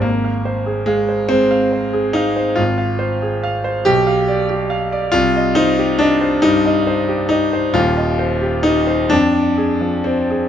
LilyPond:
\new Staff \with { instrumentName = "Grand piano" } { \time 6/8 \key f \dorian \tempo 4. = 47 << { aes,,16 f''16 c''16 aes'16 f''16 c''16 aes,16 f''16 c''16 aes'16 f''16 c''16 | \key c \minor aes,,16 f''16 c''16 aes'16 f''16 c''16 b,,16 f''16 d''16 g'16 f''16 d''16 | c,16 ees''16 c''16 g'16 ees''16 c''16 g,16 ees''16 c''16 g'16 ees''16 c''16 | <ees,, ees,>16 ees''16 c''16 g'16 ees''16 c''16 f,16 d''16 aes'16 f16 d''16 aes'16 | } \\ { bes4 aes8 c'8 r8 ees'8 | f'4. g'4. | f'8 ees'8 d'8 ees'4 ees'8 | f'4 ees'8 d'4 c'8 | } >> }